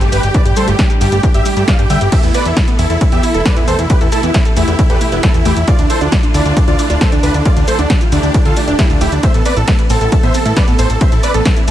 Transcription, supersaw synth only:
0.01 G4
0.12 G4 B4
0.23 G4
0.35 B4 D5
0.46 G4
0.57 A4 C5
0.68 G4
0.79 G4
1.01 G4
1.12 G4
1.23 G4
1.35 G4 E5
1.45 G4
1.57 G4
1.68 D5 F5
1.79 G4
1.90 E5 G5
2.01 G4
2.12 G4 E5
2.23 E4
2.34 B4 D5
2.46 E4
2.57 E4
2.79 E4
2.90 E4
3.01 E4
3.12 G4 E5
3.23 E4
3.34 E4
3.45 B4 D5
3.57 E4
3.68 A4 C5
3.79 E4
3.90 G4 B4
4.01 E4
4.12 E4 A4
4.23 E4
4.34 E4
4.57 E4
4.68 E4
4.79 E4
4.90 G4 B4
5.01 E4
5.12 E4
5.23 E4 A4
5.34 E4
5.45 E4 G4
5.57 E4
5.68 F4 D5
5.79 D4
5.90 A4 C5
6.01 D4
6.12 D4
6.34 D4
6.45 D4
6.56 D4
6.68 F4 D5
6.79 D4
6.90 D4
7.01 A4 C5
7.12 D4
7.23 D4 B4
7.34 D4
7.45 F4 D5
7.57 D4
7.68 A4 C5
7.79 D4
7.90 D4
8.12 D4
8.23 D4
8.34 D4
8.46 F4 A4
8.57 D4
8.68 D4
8.79 E4 G4
8.90 D4
9.01 E4 G4
9.12 D4
9.23 C5 E5
9.35 A4
9.46 B4 D5
9.57 A4
9.68 A4
9.90 A4
10.01 A4
10.12 A4
10.23 C5 E5
10.34 A4
10.46 A4
10.57 B4 D5
10.68 A4
10.79 A4 C5
10.90 A4
11.01 C5 E5
11.12 A4
11.23 B4 D5
11.34 A4
11.46 A4
11.68 A4

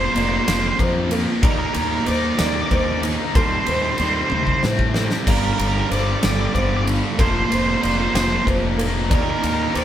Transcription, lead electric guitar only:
0.05 C5
0.12 C5
0.22 C5
0.29 C5
0.36 C5
0.44 C5
0.52 C5
0.60 C5
0.68 C5
1.44 A#4
1.51 A#4
1.58 A#4
1.66 A#4
1.74 A#4
1.81 A#4
1.89 A#4
1.95 A#4
2.07 D5
2.39 D5
2.47 D5
2.54 D5
2.61 D5
2.68 D5
2.77 D5
2.84 D5
2.92 D5
3.36 C5
3.43 C5
3.51 C5
3.59 C5
3.67 C5
3.74 C5
3.82 C5
3.91 C5
3.98 C5
4.04 C5
4.13 C5
4.21 C5
4.29 C5
4.35 C5
4.44 C5
4.52 C5
5.30 A#4
5.37 A#4
5.44 A#4
5.53 A#4
5.59 A#4
5.66 A#4
5.74 A#4
5.80 A#4
5.92 D5
6.25 D5
6.32 D5
6.41 D5
6.47 D5
6.54 D5
6.62 D5
6.69 D5
6.77 D5
7.20 C5
7.28 C5
7.35 C5
7.44 C5
7.52 C5
7.59 C5
7.67 C5
7.75 C5
7.81 C5
7.90 C5
7.98 C5
8.05 C5
8.14 C5
8.21 C5
8.28 C5
8.36 C5
9.15 A#4
9.23 A#4
9.31 A#4
9.39 A#4
9.47 A#4
9.54 A#4
9.63 A#4
9.71 A#4
9.76 D5

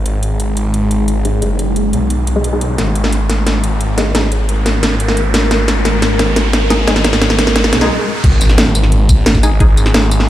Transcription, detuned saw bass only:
0.06 G#1
0.91 G#1
1.42 F#1
1.93 B1
2.78 G#1
3.64 G#1
4.15 G#1
5.00 G#1
5.51 G#1
6.36 G#1
6.87 G#1
7.73 B1
8.24 G#1
9.09 G#1
9.60 G#1

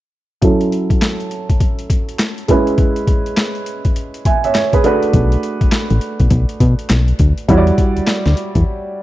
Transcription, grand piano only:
0.42 F#3 C#4 E4 A4
2.48 G#3 C#4 E4 B4
4.26 E5 G#5
4.45 C#5 E5
4.55 C#5
4.74 G#4 B4
4.84 A3 D4 F#4 B4
7.48 G3 E4 F#4 C#5
7.57 D5

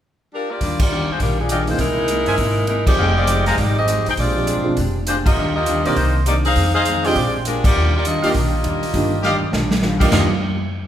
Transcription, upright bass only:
0.61 D#2
1.10 muted upright bass stroke
1.20 A#1
1.79 C2
2.27 G2
2.38 G#1
2.97 F1
3.58 G#1
4.07 A1
4.17 A#1
4.57 C2
4.67 B1
4.77 F1
5.37 D#2
5.86 B1
5.96 C2
6.56 F2
7.16 A#1
7.76 D#2
8.24 muted upright bass stroke
8.35 A#1
8.65 E2
8.94 G1
9.42 muted upright bass stroke
9.53 A#1
10.12 D#2

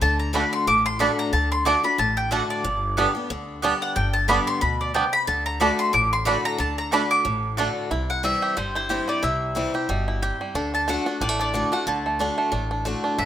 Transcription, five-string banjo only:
0.35 A3 D4
1.01 A3 D4
1.66 A3 D4
2.32 A3 D4
2.98 G3 B3 D4
3.64 G3 B3 D4
4.29 G3 B3 D4
4.95 G3 B3 D4
5.61 A3 D4
6.27 A3 D4
6.93 A3 D4
7.59 A3 D4
7.91 E4
8.24 G3
8.42 G4
8.57 G3
8.75 E4
8.90 G4
9.08 G3
9.23 E4
9.56 G3
9.75 G4
9.90 G3
10.08 E4
10.22 G4
10.41 G3
10.55 D4
10.74 D4
10.88 A3
11.06 D4
11.21 G3
11.29 A3
11.39 D4
11.54 D4
11.72 A3
11.87 D3
12.06 A3
12.20 D4
12.38 A3
12.52 D4
12.71 D4
12.85 A3
13.04 D4
13.18 D3

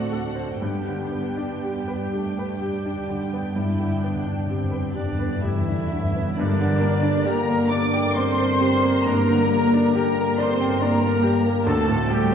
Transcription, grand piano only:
Already playing: D2 A2 C4 D4
0.12 A4
0.35 C5
0.62 G2
0.88 D3
1.11 B3
1.37 D4
1.63 G4
1.88 B4
2.12 G4
2.39 B4
2.62 G4
2.85 D4
3.10 D3
3.33 B3
3.56 G2
3.80 D3
4.04 B3
4.26 D4
4.50 G4
4.71 B4
4.94 G4
5.19 B4
5.42 G4
5.68 D4
5.92 D3
6.16 B3
6.39 G2
6.60 D3
6.80 A#3
7.02 D4
7.25 G4
7.49 A#4
7.72 D5
7.93 G5
8.16 D5
8.39 A#4
8.60 G4
8.84 A#3
9.06 G2
9.30 D3
9.53 A#3
9.74 D4
9.95 G4
10.19 A#4
10.38 D5
10.61 G5
10.81 D5
11.00 A#4
11.23 G4
11.46 A#3
11.66 D2
11.88 A2
12.10 A3
12.32 C4

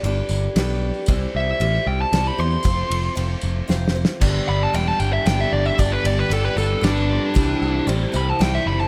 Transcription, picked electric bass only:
0.03 G1
0.29 G1
0.56 B1
1.08 C2
1.35 C2
1.60 A1
1.87 C2
2.12 C2
2.39 E2
2.65 F1
2.90 F1
3.17 F1
3.43 F1
3.69 F1
4.21 G1
4.49 G1
4.74 E1
5.00 G1
5.26 G1
5.53 G1
5.79 G1
6.04 G1
6.30 G1
6.56 G1
6.82 G1
7.36 C2
7.62 C2
7.87 A1
8.14 C2
8.40 C2
8.66 F#1

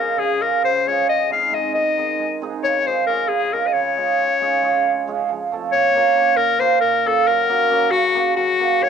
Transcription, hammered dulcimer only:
Already playing: C#3 G#3 C#4 F4 G#4
0.16 C#3
0.40 G#3 C#4 F4 G#4
0.63 C#3
0.86 G#3 C#4 F4 G#4
1.08 G#3
1.30 G#3 C4 D#4 G#4
1.51 G#3 C4 D#4 G#4
1.73 D#3
1.97 G#3 C4 D#4 G#4
2.19 G#3
2.42 G#3 C4 D#4 G#4
2.64 C#3
2.86 G#3 C#4 F4 G#4
3.08 G#3 C#4 F4 G#4
3.29 C#3
3.52 G#3 C#4 F4 G#4
3.74 C#3
3.97 G#3 C#4 F4 G#4
4.20 C#3
4.41 G#3 C#4 F4 G#4
4.62 G#3 C#4 F4 G#4
4.84 C#3
5.07 G#3 C#4 F4 G#4
5.29 F3
5.52 A3 C4 F4 A4
5.73 A#2
5.95 A#3 C#4 F4 A#4
6.15 A#3 C#4 F4 A#4
6.37 A#2
6.60 A#3 C#4 F4 A#4
6.82 A#2
7.05 A#3 C#4 F4 A#4
7.27 F#3
7.49 A#3 C#4 F#4 A#4
7.70 A#3 C#4 F#4 A#4
7.91 C#3
8.15 A#3 C#4 F#4 A#4
8.36 F#3
8.59 A#3 C#4 F#4 A#4
8.81 D#3

